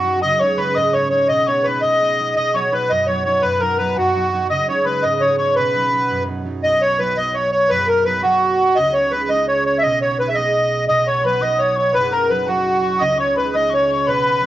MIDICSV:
0, 0, Header, 1, 4, 480
1, 0, Start_track
1, 0, Key_signature, 5, "major"
1, 0, Tempo, 354820
1, 319, Time_signature, 6, 3, 24, 8
1, 19561, End_track
2, 0, Start_track
2, 0, Title_t, "Tin whistle"
2, 0, Program_c, 0, 75
2, 0, Note_on_c, 0, 78, 83
2, 297, Note_on_c, 0, 87, 91
2, 317, Note_off_c, 0, 78, 0
2, 534, Note_on_c, 0, 85, 85
2, 554, Note_off_c, 0, 87, 0
2, 789, Note_on_c, 0, 83, 80
2, 809, Note_off_c, 0, 85, 0
2, 1010, Note_on_c, 0, 87, 93
2, 1030, Note_off_c, 0, 83, 0
2, 1264, Note_on_c, 0, 85, 77
2, 1284, Note_off_c, 0, 87, 0
2, 1496, Note_off_c, 0, 85, 0
2, 1504, Note_on_c, 0, 85, 78
2, 1754, Note_on_c, 0, 87, 84
2, 1774, Note_off_c, 0, 85, 0
2, 1984, Note_on_c, 0, 85, 76
2, 2004, Note_off_c, 0, 87, 0
2, 2235, Note_off_c, 0, 85, 0
2, 2242, Note_on_c, 0, 83, 73
2, 2462, Note_off_c, 0, 83, 0
2, 2471, Note_on_c, 0, 87, 95
2, 3149, Note_off_c, 0, 87, 0
2, 3203, Note_on_c, 0, 87, 81
2, 3429, Note_off_c, 0, 87, 0
2, 3438, Note_on_c, 0, 85, 77
2, 3519, Note_off_c, 0, 85, 0
2, 3685, Note_on_c, 0, 83, 68
2, 3910, Note_off_c, 0, 83, 0
2, 3933, Note_on_c, 0, 87, 83
2, 4155, Note_off_c, 0, 87, 0
2, 4169, Note_on_c, 0, 85, 72
2, 4393, Note_off_c, 0, 85, 0
2, 4409, Note_on_c, 0, 85, 76
2, 4643, Note_on_c, 0, 83, 79
2, 4663, Note_off_c, 0, 85, 0
2, 4771, Note_off_c, 0, 83, 0
2, 4779, Note_on_c, 0, 83, 56
2, 4882, Note_on_c, 0, 82, 81
2, 4902, Note_off_c, 0, 83, 0
2, 5370, Note_on_c, 0, 78, 73
2, 5390, Note_off_c, 0, 82, 0
2, 5785, Note_off_c, 0, 78, 0
2, 6085, Note_on_c, 0, 87, 86
2, 6312, Note_off_c, 0, 87, 0
2, 6556, Note_on_c, 0, 83, 73
2, 6788, Note_off_c, 0, 83, 0
2, 6802, Note_on_c, 0, 87, 89
2, 7255, Note_off_c, 0, 87, 0
2, 7292, Note_on_c, 0, 85, 76
2, 7530, Note_on_c, 0, 83, 79
2, 7550, Note_off_c, 0, 85, 0
2, 8493, Note_off_c, 0, 83, 0
2, 14731, Note_on_c, 0, 87, 94
2, 14953, Note_off_c, 0, 87, 0
2, 14970, Note_on_c, 0, 85, 88
2, 15204, Note_on_c, 0, 83, 81
2, 15224, Note_off_c, 0, 85, 0
2, 15438, Note_on_c, 0, 87, 92
2, 15459, Note_off_c, 0, 83, 0
2, 15904, Note_on_c, 0, 85, 82
2, 15924, Note_off_c, 0, 87, 0
2, 16139, Note_off_c, 0, 85, 0
2, 16147, Note_on_c, 0, 83, 80
2, 16379, Note_off_c, 0, 83, 0
2, 16391, Note_on_c, 0, 82, 87
2, 16621, Note_off_c, 0, 82, 0
2, 16635, Note_on_c, 0, 83, 78
2, 16870, Note_on_c, 0, 78, 81
2, 16890, Note_off_c, 0, 83, 0
2, 17330, Note_off_c, 0, 78, 0
2, 17338, Note_on_c, 0, 85, 83
2, 17564, Note_off_c, 0, 85, 0
2, 17572, Note_on_c, 0, 87, 86
2, 17653, Note_off_c, 0, 87, 0
2, 17769, Note_on_c, 0, 87, 63
2, 17827, Note_on_c, 0, 85, 84
2, 17848, Note_off_c, 0, 87, 0
2, 18061, Note_off_c, 0, 85, 0
2, 18069, Note_on_c, 0, 83, 72
2, 18299, Note_off_c, 0, 83, 0
2, 18307, Note_on_c, 0, 87, 86
2, 18534, Note_on_c, 0, 85, 76
2, 18554, Note_off_c, 0, 87, 0
2, 18769, Note_off_c, 0, 85, 0
2, 18777, Note_on_c, 0, 85, 81
2, 19034, Note_on_c, 0, 83, 78
2, 19055, Note_off_c, 0, 85, 0
2, 19561, Note_off_c, 0, 83, 0
2, 19561, End_track
3, 0, Start_track
3, 0, Title_t, "Accordion"
3, 0, Program_c, 1, 21
3, 0, Note_on_c, 1, 66, 96
3, 266, Note_off_c, 1, 66, 0
3, 298, Note_on_c, 1, 75, 118
3, 544, Note_on_c, 1, 73, 94
3, 557, Note_off_c, 1, 75, 0
3, 782, Note_on_c, 1, 71, 92
3, 800, Note_off_c, 1, 73, 0
3, 1027, Note_on_c, 1, 75, 101
3, 1039, Note_off_c, 1, 71, 0
3, 1266, Note_on_c, 1, 73, 93
3, 1282, Note_off_c, 1, 75, 0
3, 1467, Note_off_c, 1, 73, 0
3, 1487, Note_on_c, 1, 73, 89
3, 1727, Note_off_c, 1, 73, 0
3, 1735, Note_on_c, 1, 75, 106
3, 1996, Note_on_c, 1, 73, 84
3, 1997, Note_off_c, 1, 75, 0
3, 2212, Note_on_c, 1, 71, 80
3, 2248, Note_off_c, 1, 73, 0
3, 2451, Note_off_c, 1, 71, 0
3, 2453, Note_on_c, 1, 75, 98
3, 3176, Note_off_c, 1, 75, 0
3, 3197, Note_on_c, 1, 75, 109
3, 3450, Note_off_c, 1, 75, 0
3, 3458, Note_on_c, 1, 73, 84
3, 3694, Note_on_c, 1, 71, 82
3, 3700, Note_off_c, 1, 73, 0
3, 3919, Note_on_c, 1, 75, 98
3, 3939, Note_off_c, 1, 71, 0
3, 4145, Note_on_c, 1, 73, 81
3, 4147, Note_off_c, 1, 75, 0
3, 4376, Note_off_c, 1, 73, 0
3, 4396, Note_on_c, 1, 73, 88
3, 4621, Note_on_c, 1, 71, 102
3, 4651, Note_off_c, 1, 73, 0
3, 4871, Note_on_c, 1, 70, 81
3, 4884, Note_off_c, 1, 71, 0
3, 5104, Note_off_c, 1, 70, 0
3, 5112, Note_on_c, 1, 71, 86
3, 5370, Note_off_c, 1, 71, 0
3, 5388, Note_on_c, 1, 66, 83
3, 6052, Note_off_c, 1, 66, 0
3, 6092, Note_on_c, 1, 75, 105
3, 6316, Note_off_c, 1, 75, 0
3, 6339, Note_on_c, 1, 73, 89
3, 6560, Note_off_c, 1, 73, 0
3, 6571, Note_on_c, 1, 71, 81
3, 6800, Note_on_c, 1, 75, 96
3, 6820, Note_off_c, 1, 71, 0
3, 7041, Note_on_c, 1, 73, 80
3, 7055, Note_off_c, 1, 75, 0
3, 7252, Note_off_c, 1, 73, 0
3, 7272, Note_on_c, 1, 73, 77
3, 7506, Note_off_c, 1, 73, 0
3, 7517, Note_on_c, 1, 71, 96
3, 8433, Note_off_c, 1, 71, 0
3, 8974, Note_on_c, 1, 75, 113
3, 9219, Note_on_c, 1, 73, 94
3, 9223, Note_off_c, 1, 75, 0
3, 9456, Note_on_c, 1, 71, 89
3, 9465, Note_off_c, 1, 73, 0
3, 9700, Note_on_c, 1, 75, 100
3, 9703, Note_off_c, 1, 71, 0
3, 9932, Note_on_c, 1, 73, 90
3, 9945, Note_off_c, 1, 75, 0
3, 10152, Note_off_c, 1, 73, 0
3, 10172, Note_on_c, 1, 73, 90
3, 10407, Note_on_c, 1, 71, 113
3, 10421, Note_off_c, 1, 73, 0
3, 10653, Note_on_c, 1, 70, 95
3, 10659, Note_off_c, 1, 71, 0
3, 10877, Note_off_c, 1, 70, 0
3, 10889, Note_on_c, 1, 71, 94
3, 11115, Note_off_c, 1, 71, 0
3, 11129, Note_on_c, 1, 66, 102
3, 11844, Note_on_c, 1, 75, 111
3, 11873, Note_off_c, 1, 66, 0
3, 12090, Note_on_c, 1, 73, 86
3, 12096, Note_off_c, 1, 75, 0
3, 12328, Note_on_c, 1, 71, 93
3, 12339, Note_off_c, 1, 73, 0
3, 12574, Note_on_c, 1, 75, 109
3, 12578, Note_off_c, 1, 71, 0
3, 12797, Note_off_c, 1, 75, 0
3, 12826, Note_on_c, 1, 73, 95
3, 13043, Note_off_c, 1, 73, 0
3, 13063, Note_on_c, 1, 73, 90
3, 13226, Note_off_c, 1, 73, 0
3, 13235, Note_on_c, 1, 76, 84
3, 13294, Note_off_c, 1, 76, 0
3, 13295, Note_on_c, 1, 75, 115
3, 13517, Note_off_c, 1, 75, 0
3, 13554, Note_on_c, 1, 73, 95
3, 13767, Note_off_c, 1, 73, 0
3, 13792, Note_on_c, 1, 71, 87
3, 13916, Note_on_c, 1, 76, 76
3, 13917, Note_off_c, 1, 71, 0
3, 13999, Note_on_c, 1, 75, 101
3, 14011, Note_off_c, 1, 76, 0
3, 14673, Note_off_c, 1, 75, 0
3, 14721, Note_on_c, 1, 75, 108
3, 14973, Note_off_c, 1, 75, 0
3, 14975, Note_on_c, 1, 73, 88
3, 15219, Note_off_c, 1, 73, 0
3, 15223, Note_on_c, 1, 71, 86
3, 15447, Note_on_c, 1, 75, 99
3, 15463, Note_off_c, 1, 71, 0
3, 15674, Note_on_c, 1, 73, 84
3, 15695, Note_off_c, 1, 75, 0
3, 15916, Note_off_c, 1, 73, 0
3, 15936, Note_on_c, 1, 73, 86
3, 16150, Note_on_c, 1, 71, 102
3, 16156, Note_off_c, 1, 73, 0
3, 16390, Note_on_c, 1, 70, 85
3, 16406, Note_off_c, 1, 71, 0
3, 16634, Note_on_c, 1, 71, 83
3, 16646, Note_off_c, 1, 70, 0
3, 16876, Note_on_c, 1, 66, 90
3, 16888, Note_off_c, 1, 71, 0
3, 17599, Note_on_c, 1, 75, 117
3, 17622, Note_off_c, 1, 66, 0
3, 17825, Note_off_c, 1, 75, 0
3, 17855, Note_on_c, 1, 73, 90
3, 18073, Note_off_c, 1, 73, 0
3, 18094, Note_on_c, 1, 71, 87
3, 18333, Note_on_c, 1, 75, 101
3, 18336, Note_off_c, 1, 71, 0
3, 18575, Note_off_c, 1, 75, 0
3, 18589, Note_on_c, 1, 73, 85
3, 18817, Note_off_c, 1, 73, 0
3, 18837, Note_on_c, 1, 73, 76
3, 19050, Note_on_c, 1, 71, 92
3, 19066, Note_off_c, 1, 73, 0
3, 19561, Note_off_c, 1, 71, 0
3, 19561, End_track
4, 0, Start_track
4, 0, Title_t, "Harp"
4, 0, Program_c, 2, 46
4, 0, Note_on_c, 2, 42, 70
4, 83, Note_on_c, 2, 54, 50
4, 85, Note_on_c, 2, 59, 46
4, 95, Note_on_c, 2, 63, 52
4, 319, Note_on_c, 2, 49, 69
4, 387, Note_off_c, 2, 42, 0
4, 387, Note_off_c, 2, 54, 0
4, 547, Note_on_c, 2, 56, 48
4, 555, Note_on_c, 2, 61, 44
4, 558, Note_off_c, 2, 63, 0
4, 564, Note_on_c, 2, 63, 57
4, 756, Note_off_c, 2, 56, 0
4, 772, Note_on_c, 2, 56, 49
4, 780, Note_off_c, 2, 61, 0
4, 785, Note_on_c, 2, 61, 41
4, 790, Note_off_c, 2, 63, 0
4, 796, Note_on_c, 2, 63, 54
4, 1030, Note_on_c, 2, 44, 68
4, 1109, Note_off_c, 2, 49, 0
4, 1237, Note_off_c, 2, 56, 0
4, 1249, Note_on_c, 2, 56, 45
4, 1256, Note_off_c, 2, 61, 0
4, 1259, Note_off_c, 2, 63, 0
4, 1262, Note_on_c, 2, 61, 41
4, 1264, Note_on_c, 2, 63, 49
4, 1491, Note_off_c, 2, 56, 0
4, 1506, Note_on_c, 2, 56, 46
4, 1509, Note_off_c, 2, 61, 0
4, 1514, Note_off_c, 2, 63, 0
4, 1514, Note_on_c, 2, 61, 45
4, 1520, Note_on_c, 2, 63, 53
4, 1750, Note_on_c, 2, 47, 67
4, 1831, Note_off_c, 2, 44, 0
4, 1831, Note_off_c, 2, 56, 0
4, 1992, Note_on_c, 2, 56, 51
4, 1995, Note_off_c, 2, 59, 0
4, 1998, Note_off_c, 2, 63, 0
4, 2000, Note_on_c, 2, 59, 41
4, 2003, Note_on_c, 2, 63, 50
4, 2240, Note_off_c, 2, 56, 0
4, 2256, Note_on_c, 2, 56, 48
4, 2258, Note_off_c, 2, 59, 0
4, 2264, Note_on_c, 2, 59, 41
4, 2265, Note_off_c, 2, 63, 0
4, 2271, Note_on_c, 2, 63, 54
4, 2473, Note_off_c, 2, 47, 0
4, 2489, Note_on_c, 2, 47, 69
4, 2713, Note_off_c, 2, 56, 0
4, 2730, Note_on_c, 2, 56, 44
4, 2733, Note_off_c, 2, 59, 0
4, 2739, Note_off_c, 2, 63, 0
4, 2739, Note_on_c, 2, 59, 39
4, 2744, Note_on_c, 2, 63, 45
4, 2956, Note_off_c, 2, 56, 0
4, 2970, Note_on_c, 2, 56, 43
4, 2973, Note_off_c, 2, 59, 0
4, 2974, Note_off_c, 2, 63, 0
4, 2978, Note_on_c, 2, 59, 45
4, 2979, Note_on_c, 2, 63, 50
4, 3182, Note_off_c, 2, 47, 0
4, 3199, Note_on_c, 2, 47, 64
4, 3274, Note_off_c, 2, 56, 0
4, 3429, Note_on_c, 2, 54, 45
4, 3434, Note_off_c, 2, 59, 0
4, 3437, Note_off_c, 2, 63, 0
4, 3440, Note_on_c, 2, 59, 43
4, 3443, Note_on_c, 2, 63, 51
4, 3656, Note_off_c, 2, 54, 0
4, 3668, Note_on_c, 2, 54, 45
4, 3672, Note_off_c, 2, 59, 0
4, 3674, Note_off_c, 2, 63, 0
4, 3677, Note_on_c, 2, 59, 44
4, 3679, Note_on_c, 2, 63, 50
4, 3929, Note_on_c, 2, 42, 66
4, 3996, Note_off_c, 2, 47, 0
4, 4159, Note_off_c, 2, 54, 0
4, 4175, Note_on_c, 2, 54, 47
4, 4176, Note_off_c, 2, 59, 0
4, 4181, Note_on_c, 2, 59, 42
4, 4184, Note_off_c, 2, 63, 0
4, 4190, Note_on_c, 2, 63, 50
4, 4399, Note_off_c, 2, 54, 0
4, 4412, Note_on_c, 2, 54, 47
4, 4416, Note_off_c, 2, 59, 0
4, 4416, Note_off_c, 2, 63, 0
4, 4421, Note_on_c, 2, 59, 42
4, 4421, Note_on_c, 2, 63, 53
4, 4633, Note_off_c, 2, 42, 0
4, 4649, Note_on_c, 2, 42, 68
4, 4865, Note_off_c, 2, 54, 0
4, 4881, Note_off_c, 2, 59, 0
4, 4881, Note_on_c, 2, 54, 47
4, 4887, Note_on_c, 2, 59, 43
4, 4895, Note_off_c, 2, 63, 0
4, 4901, Note_on_c, 2, 63, 51
4, 5118, Note_off_c, 2, 54, 0
4, 5134, Note_off_c, 2, 59, 0
4, 5134, Note_on_c, 2, 54, 45
4, 5140, Note_off_c, 2, 63, 0
4, 5140, Note_on_c, 2, 59, 42
4, 5145, Note_on_c, 2, 63, 51
4, 5354, Note_off_c, 2, 42, 0
4, 5370, Note_on_c, 2, 42, 65
4, 5434, Note_off_c, 2, 61, 0
4, 5602, Note_off_c, 2, 54, 0
4, 5617, Note_off_c, 2, 59, 0
4, 5618, Note_on_c, 2, 54, 44
4, 5622, Note_on_c, 2, 59, 42
4, 5629, Note_off_c, 2, 63, 0
4, 5634, Note_on_c, 2, 63, 48
4, 5840, Note_off_c, 2, 54, 0
4, 5852, Note_on_c, 2, 54, 49
4, 5854, Note_off_c, 2, 59, 0
4, 5860, Note_on_c, 2, 59, 44
4, 5862, Note_off_c, 2, 63, 0
4, 5867, Note_on_c, 2, 63, 51
4, 6089, Note_on_c, 2, 49, 66
4, 6161, Note_off_c, 2, 42, 0
4, 6161, Note_off_c, 2, 54, 0
4, 6327, Note_on_c, 2, 56, 50
4, 6332, Note_off_c, 2, 63, 0
4, 6338, Note_on_c, 2, 63, 54
4, 6339, Note_on_c, 2, 61, 46
4, 6548, Note_off_c, 2, 56, 0
4, 6564, Note_on_c, 2, 56, 46
4, 6566, Note_off_c, 2, 61, 0
4, 6571, Note_on_c, 2, 61, 44
4, 6577, Note_off_c, 2, 63, 0
4, 6583, Note_on_c, 2, 63, 53
4, 6815, Note_on_c, 2, 44, 68
4, 6882, Note_off_c, 2, 49, 0
4, 7026, Note_off_c, 2, 56, 0
4, 7039, Note_on_c, 2, 56, 47
4, 7043, Note_off_c, 2, 61, 0
4, 7048, Note_on_c, 2, 61, 43
4, 7050, Note_off_c, 2, 63, 0
4, 7056, Note_on_c, 2, 63, 51
4, 7279, Note_off_c, 2, 56, 0
4, 7293, Note_off_c, 2, 61, 0
4, 7293, Note_on_c, 2, 56, 48
4, 7299, Note_on_c, 2, 61, 43
4, 7304, Note_off_c, 2, 63, 0
4, 7309, Note_on_c, 2, 63, 52
4, 7546, Note_on_c, 2, 47, 64
4, 7603, Note_off_c, 2, 44, 0
4, 7603, Note_off_c, 2, 56, 0
4, 7773, Note_on_c, 2, 54, 46
4, 7777, Note_off_c, 2, 59, 0
4, 7782, Note_off_c, 2, 63, 0
4, 7783, Note_on_c, 2, 59, 42
4, 7787, Note_on_c, 2, 63, 52
4, 7990, Note_off_c, 2, 54, 0
4, 8006, Note_on_c, 2, 54, 45
4, 8008, Note_off_c, 2, 59, 0
4, 8013, Note_on_c, 2, 59, 42
4, 8015, Note_off_c, 2, 63, 0
4, 8020, Note_on_c, 2, 63, 50
4, 8259, Note_on_c, 2, 42, 68
4, 8324, Note_off_c, 2, 47, 0
4, 8461, Note_off_c, 2, 54, 0
4, 8466, Note_on_c, 2, 54, 45
4, 8481, Note_off_c, 2, 59, 0
4, 8486, Note_on_c, 2, 59, 42
4, 8499, Note_off_c, 2, 63, 0
4, 8505, Note_on_c, 2, 63, 46
4, 8711, Note_off_c, 2, 54, 0
4, 8727, Note_on_c, 2, 54, 48
4, 8733, Note_off_c, 2, 59, 0
4, 8738, Note_on_c, 2, 59, 42
4, 8740, Note_off_c, 2, 63, 0
4, 8745, Note_on_c, 2, 63, 53
4, 8985, Note_on_c, 2, 35, 65
4, 8990, Note_on_c, 2, 47, 61
4, 9044, Note_off_c, 2, 42, 0
4, 9044, Note_off_c, 2, 54, 0
4, 9459, Note_on_c, 2, 54, 51
4, 9464, Note_off_c, 2, 59, 0
4, 9465, Note_off_c, 2, 63, 0
4, 9469, Note_on_c, 2, 59, 42
4, 9470, Note_on_c, 2, 63, 52
4, 9687, Note_off_c, 2, 54, 0
4, 9700, Note_on_c, 2, 54, 47
4, 9703, Note_off_c, 2, 59, 0
4, 9709, Note_off_c, 2, 63, 0
4, 9709, Note_on_c, 2, 59, 44
4, 9715, Note_on_c, 2, 63, 57
4, 10421, Note_on_c, 2, 42, 62
4, 10431, Note_on_c, 2, 30, 60
4, 10483, Note_off_c, 2, 35, 0
4, 10483, Note_off_c, 2, 47, 0
4, 10892, Note_off_c, 2, 54, 0
4, 10908, Note_on_c, 2, 54, 49
4, 10909, Note_off_c, 2, 59, 0
4, 10912, Note_off_c, 2, 63, 0
4, 10915, Note_on_c, 2, 59, 45
4, 10917, Note_on_c, 2, 63, 50
4, 11131, Note_off_c, 2, 54, 0
4, 11144, Note_on_c, 2, 54, 50
4, 11147, Note_off_c, 2, 59, 0
4, 11150, Note_off_c, 2, 63, 0
4, 11153, Note_on_c, 2, 59, 46
4, 11155, Note_on_c, 2, 63, 56
4, 11219, Note_off_c, 2, 61, 0
4, 11876, Note_on_c, 2, 49, 67
4, 11890, Note_on_c, 2, 37, 64
4, 11922, Note_off_c, 2, 30, 0
4, 11922, Note_off_c, 2, 42, 0
4, 11922, Note_off_c, 2, 54, 0
4, 12336, Note_on_c, 2, 56, 50
4, 12362, Note_on_c, 2, 61, 45
4, 12388, Note_off_c, 2, 63, 0
4, 12393, Note_on_c, 2, 63, 53
4, 12562, Note_off_c, 2, 56, 0
4, 12567, Note_on_c, 2, 56, 50
4, 12597, Note_off_c, 2, 61, 0
4, 12603, Note_on_c, 2, 61, 46
4, 12630, Note_off_c, 2, 63, 0
4, 12635, Note_on_c, 2, 63, 59
4, 13318, Note_on_c, 2, 35, 63
4, 13327, Note_on_c, 2, 47, 68
4, 13360, Note_off_c, 2, 37, 0
4, 13360, Note_off_c, 2, 49, 0
4, 13360, Note_off_c, 2, 56, 0
4, 13791, Note_on_c, 2, 56, 50
4, 13798, Note_off_c, 2, 59, 0
4, 13804, Note_off_c, 2, 63, 0
4, 13804, Note_on_c, 2, 59, 43
4, 13809, Note_on_c, 2, 63, 55
4, 14001, Note_off_c, 2, 56, 0
4, 14017, Note_on_c, 2, 56, 47
4, 14020, Note_off_c, 2, 59, 0
4, 14025, Note_on_c, 2, 59, 46
4, 14028, Note_off_c, 2, 63, 0
4, 14034, Note_on_c, 2, 63, 55
4, 14716, Note_off_c, 2, 35, 0
4, 14719, Note_off_c, 2, 47, 0
4, 14729, Note_on_c, 2, 35, 63
4, 14739, Note_on_c, 2, 47, 66
4, 14798, Note_off_c, 2, 56, 0
4, 15200, Note_on_c, 2, 54, 50
4, 15205, Note_off_c, 2, 63, 0
4, 15210, Note_on_c, 2, 63, 53
4, 15214, Note_off_c, 2, 59, 0
4, 15219, Note_on_c, 2, 59, 43
4, 15428, Note_off_c, 2, 54, 0
4, 15440, Note_on_c, 2, 54, 52
4, 15448, Note_off_c, 2, 63, 0
4, 15449, Note_off_c, 2, 59, 0
4, 15454, Note_on_c, 2, 59, 43
4, 15454, Note_on_c, 2, 63, 56
4, 16151, Note_on_c, 2, 30, 64
4, 16159, Note_on_c, 2, 42, 66
4, 16236, Note_off_c, 2, 35, 0
4, 16236, Note_off_c, 2, 47, 0
4, 16523, Note_off_c, 2, 61, 0
4, 16631, Note_off_c, 2, 54, 0
4, 16646, Note_off_c, 2, 59, 0
4, 16648, Note_on_c, 2, 54, 47
4, 16652, Note_on_c, 2, 59, 45
4, 16654, Note_off_c, 2, 63, 0
4, 16659, Note_on_c, 2, 63, 50
4, 16864, Note_off_c, 2, 54, 0
4, 16880, Note_on_c, 2, 54, 51
4, 16884, Note_off_c, 2, 59, 0
4, 16890, Note_off_c, 2, 63, 0
4, 16890, Note_on_c, 2, 59, 46
4, 16895, Note_on_c, 2, 63, 56
4, 17589, Note_on_c, 2, 37, 66
4, 17595, Note_on_c, 2, 49, 71
4, 17673, Note_off_c, 2, 30, 0
4, 17673, Note_off_c, 2, 42, 0
4, 17673, Note_off_c, 2, 54, 0
4, 18076, Note_on_c, 2, 56, 51
4, 18084, Note_off_c, 2, 63, 0
4, 18089, Note_on_c, 2, 61, 45
4, 18089, Note_on_c, 2, 63, 53
4, 18304, Note_off_c, 2, 56, 0
4, 18320, Note_on_c, 2, 56, 52
4, 18326, Note_off_c, 2, 61, 0
4, 18331, Note_on_c, 2, 61, 47
4, 18334, Note_off_c, 2, 63, 0
4, 18339, Note_on_c, 2, 63, 58
4, 19041, Note_on_c, 2, 47, 64
4, 19048, Note_on_c, 2, 35, 62
4, 19110, Note_off_c, 2, 37, 0
4, 19110, Note_off_c, 2, 49, 0
4, 19110, Note_off_c, 2, 56, 0
4, 19483, Note_on_c, 2, 54, 48
4, 19504, Note_off_c, 2, 59, 0
4, 19510, Note_on_c, 2, 59, 46
4, 19533, Note_off_c, 2, 63, 0
4, 19561, Note_off_c, 2, 35, 0
4, 19561, Note_off_c, 2, 47, 0
4, 19561, Note_off_c, 2, 54, 0
4, 19561, Note_off_c, 2, 59, 0
4, 19561, Note_off_c, 2, 61, 0
4, 19561, End_track
0, 0, End_of_file